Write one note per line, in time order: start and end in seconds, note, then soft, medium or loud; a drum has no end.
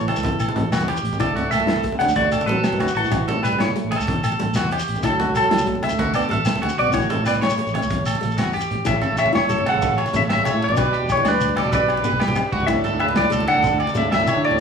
0.00 0.14 A1 medium
0.00 1.01 E3 medium
0.00 0.12 A3 medium
0.00 1.01 A4 medium
0.00 shekere soft
0.08 0.38 A4 medium
0.08 closed hi-hat soft
0.08 muted conga loud
0.08 low agogo medium
0.16 0.23 C#2 medium
0.16 low conga soft
0.16 shekere medium
0.23 0.37 E2 medium
0.23 kick medium
0.23 closed hi-hat medium
0.23 low conga loud
0.23 shekere soft
0.32 high conga medium
0.32 low conga soft
0.39 0.47 A1 medium
0.39 0.71 A4 medium
0.39 closed hi-hat soft
0.39 low conga soft
0.39 low agogo medium
0.39 shekere medium
0.48 muted conga medium
0.48 low conga soft
0.56 0.69 A1 medium
0.56 0.77 A3 medium
0.56 closed hi-hat soft
0.56 low conga loud
0.63 low conga soft
0.71 0.97 E2 medium
0.71 0.87 F#4 medium
0.71 snare medium
0.71 closed hi-hat medium
0.71 low agogo medium
0.71 shekere medium
0.81 high conga medium
0.81 low conga medium
0.81 shekere soft
0.88 1.19 G4 medium
0.88 closed hi-hat soft
0.88 muted conga loud
0.88 low conga soft
0.88 low agogo medium
0.96 shekere medium
1.03 1.10 A1 medium
1.03 closed hi-hat soft
1.12 low conga medium
1.12 shekere soft
1.20 1.33 D2 medium
1.20 1.50 A3 medium
1.20 1.40 E4 medium
1.20 1.35 A4 medium
1.20 1.50 D5 medium
1.20 kick medium
1.20 closed hi-hat medium
1.20 muted conga loud
1.20 low agogo medium
1.20 shekere medium
1.29 high conga medium
1.36 1.43 D2 medium
1.36 1.51 F#4 medium
1.36 closed hi-hat soft
1.36 low conga loud
1.44 1.93 C#2 medium
1.51 1.98 A3 medium
1.51 1.83 A4 medium
1.51 1.98 E5 loud
1.51 snare soft
1.51 closed hi-hat medium
1.51 low agogo medium
1.51 shekere medium
1.60 muted conga medium
1.60 low conga medium
1.67 1.78 E4 medium
1.67 snare medium
1.67 closed hi-hat medium
1.67 low agogo medium
1.76 high conga medium
1.83 2.04 A3 medium
1.83 kick medium
1.83 closed hi-hat medium
1.83 low conga soft
1.92 2.05 D2 medium
1.92 low conga medium
1.99 2.15 D4 medium
1.99 2.16 F#5 medium
1.99 closed hi-hat medium
1.99 muted conga loud
1.99 low agogo medium
2.08 2.14 D2 medium
2.08 low conga soft
2.08 shekere medium
2.15 2.29 D2 medium
2.15 2.46 A3 medium
2.15 2.31 F#4 medium
2.15 2.49 D5 loud
2.15 kick medium
2.15 closed hi-hat medium
2.15 low conga loud
2.25 high conga medium
2.31 2.38 D2 medium
2.31 2.46 A4 medium
2.31 closed hi-hat soft
2.31 low agogo medium
2.31 shekere medium
2.40 muted conga medium
2.40 shekere soft
2.46 2.59 A1 medium
2.46 2.93 F#3 medium
2.46 2.68 A3 medium
2.46 2.78 A4 medium
2.46 2.91 B4 medium
2.46 closed hi-hat soft
2.46 low conga medium
2.57 low conga soft
2.64 snare medium
2.64 closed hi-hat medium
2.64 low agogo medium
2.64 shekere medium
2.73 high conga medium
2.73 low conga medium
2.79 2.86 D2 medium
2.79 2.94 F#4 medium
2.79 closed hi-hat soft
2.79 muted conga loud
2.79 low conga soft
2.79 low agogo medium
2.88 shekere medium
2.95 3.08 A1 medium
2.95 3.40 E3 medium
2.95 3.26 F#4 medium
2.95 3.44 A4 medium
2.95 closed hi-hat soft
3.04 low conga medium
3.04 shekere soft
3.11 3.24 A1 medium
3.11 3.32 E4 medium
3.11 kick medium
3.11 closed hi-hat medium
3.11 muted conga loud
3.11 low agogo medium
3.11 shekere medium
3.20 high conga medium
3.26 3.33 A1 medium
3.26 3.43 A4 medium
3.26 closed hi-hat soft
3.26 low conga loud
3.35 3.74 A2 medium
3.43 3.59 G3 medium
3.43 3.58 B4 medium
3.43 3.59 B4 medium
3.43 closed hi-hat soft
3.43 low agogo medium
3.43 shekere medium
3.52 muted conga medium
3.52 low conga medium
3.59 4.21 A3 medium
3.59 3.70 E4 medium
3.59 4.20 C#5 medium
3.59 snare medium
3.59 closed hi-hat medium
3.59 low agogo medium
3.68 high conga medium
3.76 3.96 A3 medium
3.76 closed hi-hat soft
3.84 3.97 A1 medium
3.91 4.21 A4 medium
3.91 closed hi-hat medium
3.91 muted conga loud
3.91 low agogo medium
3.99 4.06 C#2 medium
3.99 low conga soft
3.99 shekere medium
4.07 4.21 E2 medium
4.07 kick medium
4.07 closed hi-hat medium
4.07 low conga medium
4.16 high conga medium
4.24 4.30 A1 medium
4.24 4.54 A4 medium
4.24 closed hi-hat medium
4.24 low agogo medium
4.24 shekere medium
4.31 muted conga medium
4.31 shekere soft
4.39 4.53 A1 medium
4.39 4.60 A3 medium
4.39 closed hi-hat soft
4.39 low conga medium
4.49 low conga soft
4.54 4.82 E2 medium
4.54 4.71 F#4 medium
4.54 snare medium
4.54 closed hi-hat medium
4.54 low agogo medium
4.54 shekere loud
4.65 high conga medium
4.71 5.02 G4 medium
4.71 closed hi-hat soft
4.71 muted conga medium
4.71 low conga soft
4.71 low agogo medium
4.79 shekere medium
4.88 4.94 A1 medium
4.88 closed hi-hat medium
4.95 low conga medium
4.95 shekere soft
5.03 5.16 D2 loud
5.03 5.24 E4 medium
5.03 5.19 A4 medium
5.03 5.36 A4 medium
5.03 kick medium
5.03 closed hi-hat medium
5.03 muted conga medium
5.03 low agogo medium
5.03 shekere medium
5.08 5.36 F#3 medium
5.08 high conga medium
5.19 5.26 D2 medium
5.19 5.35 F#4 medium
5.19 closed hi-hat soft
5.19 low conga medium
5.29 5.75 C#2 medium
5.35 5.82 F#3 medium
5.35 5.66 A4 medium
5.35 5.81 A4 loud
5.35 closed hi-hat medium
5.35 low agogo medium
5.35 shekere medium
5.44 muted conga medium
5.44 low conga medium
5.51 5.61 E4 medium
5.51 snare medium
5.51 closed hi-hat medium
5.51 low agogo medium
5.58 high conga medium
5.58 shekere medium
5.66 5.87 A3 medium
5.66 kick medium
5.66 closed hi-hat soft
5.66 low conga soft
5.75 5.88 D2 medium
5.75 low conga medium
5.83 6.14 A3 medium
5.83 6.15 E5 loud
5.83 closed hi-hat medium
5.83 muted conga medium
5.83 low agogo medium
5.89 5.98 D2 medium
5.89 low conga soft
5.89 shekere medium
5.99 6.12 D2 medium
5.99 6.14 F#4 medium
5.99 kick medium
5.99 closed hi-hat medium
5.99 low conga medium
6.07 high conga medium
6.13 6.22 D2 medium
6.13 6.32 B3 medium
6.13 6.29 A4 medium
6.13 6.20 D5 loud
6.13 closed hi-hat soft
6.13 low agogo medium
6.13 shekere medium
6.21 shekere soft
6.29 6.44 A1 medium
6.29 6.50 A3 medium
6.29 6.64 A3 medium
6.29 6.61 A4 medium
6.29 6.63 E5 medium
6.29 closed hi-hat soft
6.29 low conga medium
6.40 low conga soft
6.45 snare medium
6.45 closed hi-hat medium
6.45 low agogo medium
6.45 shekere loud
6.56 high conga medium
6.56 low conga medium
6.62 6.70 D2 loud
6.62 6.77 F#4 medium
6.62 closed hi-hat soft
6.62 muted conga medium
6.62 low conga soft
6.62 low agogo medium
6.69 shekere medium
6.78 6.92 B1 medium
6.78 6.95 B3 medium
6.78 7.09 F#4 medium
6.78 6.93 D5 medium
6.78 closed hi-hat soft
6.87 low conga medium
6.92 7.07 A1 medium
6.92 7.14 E4 medium
6.92 7.24 C#5 medium
6.92 kick medium
6.92 closed hi-hat medium
6.92 muted conga loud
6.92 low conga soft
6.92 low agogo medium
6.92 shekere medium
6.98 7.26 A3 medium
6.98 shekere soft
7.02 high conga medium
7.02 low conga soft
7.10 7.17 A1 medium
7.10 7.26 A4 medium
7.10 closed hi-hat soft
7.10 low conga loud
7.10 shekere soft
7.19 7.57 A2 medium
7.26 7.34 B3 medium
7.26 7.41 B4 medium
7.26 7.32 D5 medium
7.26 snare soft
7.26 closed hi-hat medium
7.26 low agogo medium
7.26 shekere medium
7.34 muted conga medium
7.34 low conga medium
7.34 shekere soft
7.42 8.67 A3 medium
7.42 7.52 E4 medium
7.42 7.72 C#5 medium
7.42 8.67 C#5 medium
7.42 snare medium
7.42 closed hi-hat medium
7.42 low agogo medium
7.42 shekere soft
7.49 high conga medium
7.49 shekere medium
7.58 7.78 A3 medium
7.58 closed hi-hat medium
7.67 7.80 A1 medium
7.67 shekere soft
7.74 8.05 C#5 medium
7.74 closed hi-hat medium
7.74 muted conga loud
7.74 low conga soft
7.74 low agogo medium
7.82 7.89 C#2 medium
7.82 low conga soft
7.82 shekere medium
7.89 8.03 E2 medium
7.89 kick medium
7.89 closed hi-hat medium
7.89 low conga medium
7.89 shekere soft
7.98 high conga medium
7.98 low conga soft
8.06 8.14 A1 medium
8.06 8.37 A4 medium
8.06 closed hi-hat soft
8.06 low agogo medium
8.06 shekere medium
8.15 muted conga medium
8.15 low conga soft
8.21 8.36 A1 medium
8.21 8.42 A3 medium
8.21 closed hi-hat soft
8.21 high conga medium
8.21 shekere soft
8.31 shekere soft
8.38 8.64 E2 medium
8.38 8.53 F#4 medium
8.38 snare medium
8.38 closed hi-hat medium
8.38 high conga medium
8.38 low agogo medium
8.38 shekere loud
8.53 8.84 G4 medium
8.53 closed hi-hat soft
8.53 low conga medium
8.53 low agogo medium
8.53 shekere soft
8.61 shekere medium
8.71 8.77 A1 medium
8.71 closed hi-hat soft
8.71 low conga medium
8.85 9.00 A1 medium
8.85 10.76 C#4 medium
8.85 9.06 E4 medium
8.85 10.76 E4 medium
8.85 10.76 A4 medium
8.85 9.18 E5 medium
8.85 kick medium
8.85 ride medium
8.85 muted conga medium
8.85 low conga soft
8.85 low agogo medium
8.85 shekere medium
8.90 9.18 C#3 medium
8.94 low conga soft
9.02 9.17 A4 medium
9.02 ride soft
9.02 low conga medium
9.02 shekere soft
9.11 9.30 A1 medium
9.17 9.35 C#3 medium
9.17 9.48 C#5 medium
9.17 9.35 E5 loud
9.17 ride soft
9.17 low agogo medium
9.17 shekere medium
9.26 muted conga medium
9.26 high conga medium
9.26 low conga medium
9.33 9.41 F#1 medium
9.33 9.43 E4 medium
9.33 9.67 C#5 medium
9.33 snare medium
9.33 ride medium
9.33 low agogo medium
9.33 shekere soft
9.37 9.66 A2 medium
9.43 low conga soft
9.49 9.63 F#1 medium
9.49 9.70 A3 medium
9.49 9.65 A4 medium
9.49 ride medium
9.49 shekere medium
9.58 low conga medium
9.66 9.98 C#3 medium
9.66 9.96 A4 medium
9.66 9.97 F#5 medium
9.66 snare soft
9.66 ride soft
9.66 muted conga loud
9.66 low agogo medium
9.75 9.87 A1 medium
9.75 high conga medium
9.82 kick medium
9.82 ride medium
9.82 low conga loud
9.82 shekere medium
9.90 10.03 A1 medium
9.98 10.28 C#5 medium
9.98 ride medium
9.98 low agogo medium
10.06 muted conga medium
10.06 shekere soft
10.13 10.27 A1 medium
10.13 10.34 A3 medium
10.13 10.21 E5 medium
10.13 ride medium
10.13 low conga medium
10.13 shekere medium
10.18 10.24 C#3 medium
10.22 high conga medium
10.29 10.43 A1 medium
10.29 10.45 E5 medium
10.29 10.61 E5 loud
10.29 snare medium
10.29 ride medium
10.29 low conga soft
10.29 low agogo medium
10.35 10.62 C#3 medium
10.35 low conga medium
10.45 10.76 C#5 medium
10.45 ride medium
10.45 muted conga loud
10.45 low agogo medium
10.45 shekere medium
10.53 10.67 A2 medium
10.53 low conga soft
10.62 11.12 D5 loud
10.62 ride medium
10.68 10.76 A1 medium
10.68 11.10 B2 medium
10.68 high conga medium
10.68 low conga medium
10.76 10.91 B1 loud
10.76 10.98 D4 medium
10.76 12.66 D4 medium
10.76 12.67 G4 medium
10.76 12.67 B4 medium
10.76 10.93 B4 loud
10.76 kick medium
10.76 ride medium
10.76 muted conga medium
10.76 low conga soft
10.76 low agogo medium
10.76 shekere medium
10.85 low conga soft
10.93 11.23 G4 medium
10.93 ride soft
10.93 shekere soft
11.02 11.14 E1 medium
11.09 11.26 A2 medium
11.09 11.27 C#5 medium
11.09 kick medium
11.09 ride soft
11.09 low agogo medium
11.09 shekere medium
11.17 muted conga medium
11.17 high conga medium
11.17 low conga medium
11.25 11.38 D2 medium
11.25 11.56 G2 medium
11.25 11.35 D4 medium
11.25 11.57 B4 medium
11.25 11.55 D5 medium
11.25 snare medium
11.25 ride medium
11.25 low agogo medium
11.25 shekere soft
11.33 low conga soft
11.40 11.61 D2 medium
11.40 ride soft
11.40 shekere medium
11.49 low conga medium
11.56 11.74 B2 medium
11.56 11.72 A4 medium
11.56 11.73 D5 medium
11.56 snare soft
11.56 ride medium
11.56 muted conga medium
11.56 low agogo medium
11.65 11.72 E1 medium
11.65 high conga medium
11.72 12.08 B2 medium
11.72 12.03 B4 medium
11.72 12.07 D5 medium
11.72 kick medium
11.72 ride medium
11.72 low conga medium
11.72 shekere medium
11.82 12.07 B1 medium
11.88 ride medium
11.88 low agogo medium
11.97 muted conga medium
12.04 12.25 B3 medium
12.04 12.20 B4 medium
12.04 ride soft
12.04 low conga medium
12.04 shekere medium
12.12 12.19 B1 medium
12.12 high conga medium
12.20 12.51 G4 medium
12.20 snare medium
12.20 ride medium
12.20 low conga soft
12.20 low agogo medium
12.28 12.41 B1 loud
12.28 low conga medium
12.35 ride medium
12.35 muted conga medium
12.35 low agogo medium
12.35 shekere medium
12.45 low conga soft
12.52 12.66 C#2 medium
12.52 12.68 F#4 medium
12.52 kick medium
12.52 ride medium
12.60 high conga medium
12.60 low conga medium
12.66 12.82 D2 loud
12.66 12.99 A2 medium
12.66 14.60 D4 medium
12.66 14.60 E4 medium
12.66 12.89 E4 medium
12.66 14.57 A4 medium
12.66 12.97 E5 medium
12.66 kick loud
12.66 ride medium
12.66 muted conga medium
12.66 low conga soft
12.66 low agogo medium
12.66 shekere medium
12.77 low conga soft
12.84 13.00 A4 medium
12.84 ride medium
12.84 low conga medium
12.84 shekere soft
12.93 13.12 D2 medium
12.99 13.09 C#3 medium
12.99 13.31 B4 medium
12.99 13.05 E5 loud
12.99 ride medium
12.99 low agogo medium
13.08 muted conga medium
13.08 high conga medium
13.08 low conga medium
13.16 13.24 C#2 medium
13.16 13.46 A2 medium
13.16 13.27 E4 medium
13.16 13.47 D5 medium
13.16 snare medium
13.16 ride medium
13.16 low agogo medium
13.16 shekere soft
13.24 low conga soft
13.30 13.46 C#2 medium
13.30 13.51 A3 medium
13.30 13.47 A4 medium
13.30 ride medium
13.30 shekere medium
13.40 low conga medium
13.47 13.78 D3 loud
13.47 13.79 A4 medium
13.47 13.78 F#5 loud
13.47 snare soft
13.47 ride medium
13.47 muted conga medium
13.47 low agogo medium
13.55 13.70 D2 medium
13.55 high conga medium
13.63 kick medium
13.63 ride medium
13.63 low conga medium
13.63 shekere medium
13.73 13.86 D2 medium
13.80 14.10 D5 medium
13.80 ride soft
13.80 low agogo medium
13.87 muted conga medium
13.87 shekere soft
13.95 14.10 D2 medium
13.95 14.11 C#3 medium
13.95 14.16 A3 medium
13.95 14.13 E5 medium
13.95 ride soft
13.95 low conga medium
13.95 shekere medium
14.04 high conga medium
14.12 14.25 D2 medium
14.12 14.43 A2 medium
14.12 14.27 E5 medium
14.12 14.45 E5 medium
14.12 snare medium
14.12 ride medium
14.12 low conga soft
14.12 low agogo medium
14.20 low conga medium
14.27 14.59 C#5 medium
14.27 ride soft
14.27 muted conga medium
14.27 low agogo medium
14.27 shekere medium
14.35 14.49 D3 loud
14.35 low conga soft
14.44 14.60 A2 medium
14.44 14.60 D5 loud
14.44 ride soft
14.51 14.59 D2 medium
14.51 high conga medium
14.51 low conga medium